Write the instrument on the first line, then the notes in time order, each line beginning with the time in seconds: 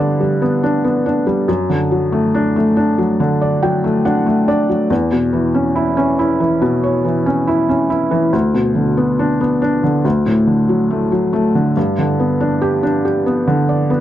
felt piano
Already playing: G2 D3 G3 B3 D4
0.00 D5
0.20 G3
0.42 B3
0.63 D4
0.84 B3
1.06 D4
1.27 G3
1.48 F#2
1.69 D3
1.92 F#3
2.12 A3
2.34 D4
2.56 A3
2.77 D4
2.98 F#3
3.20 D3
3.41 D5
3.63 F#3 G5
3.84 A3
4.05 D4 F#5
4.26 A3
4.48 D4 D5
4.69 F#3
4.90 E2
5.12 B2
5.33 E3
5.55 C#4
5.76 E4
5.97 C#4
6.19 E4
6.40 E3
6.62 B2
6.84 C#5
7.05 E3
7.26 C#4
7.48 E4
7.69 C#4
7.90 E4
8.11 E3
8.33 D2
8.54 B2
8.75 D3
8.97 B3
9.19 D4
9.40 B3
9.62 D4
9.84 D3
10.05 D2
10.26 A2
10.47 D3
10.69 F#3
10.91 A3
11.12 F#3
11.33 A3
11.55 D3
11.77 G2
11.98 D3
12.20 B3
12.40 D4
12.62 G4
12.83 D4
13.05 G4
13.26 B3
13.48 D3
13.69 D5
13.90 B3